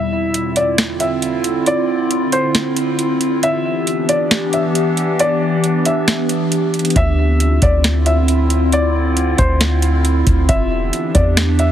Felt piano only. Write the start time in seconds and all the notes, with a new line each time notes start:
Already playing: E5
0.57 D5
1.00 E5
1.67 D5
2.33 C5
3.43 E5
4.09 D5
4.54 E5
5.20 D5
5.86 E5
6.97 E5
7.63 D5
8.06 E5
8.73 D5
9.39 C5
10.49 E5
11.15 D5
11.59 E5